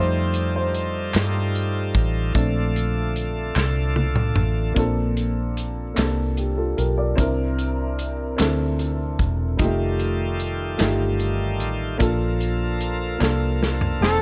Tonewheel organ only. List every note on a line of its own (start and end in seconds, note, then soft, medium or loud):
0.00 2.33 G3 medium
0.00 2.33 D#4 medium
0.00 4.74 F4 medium
0.00 4.73 A4 medium
2.35 4.74 D3 medium
2.35 4.74 A3 medium
9.58 11.98 D#3 medium
9.58 11.97 G3 medium
9.58 14.22 F4 medium
9.58 11.98 A4 medium
12.00 14.22 F3 medium
12.00 14.22 A#3 medium
12.00 14.22 A4 medium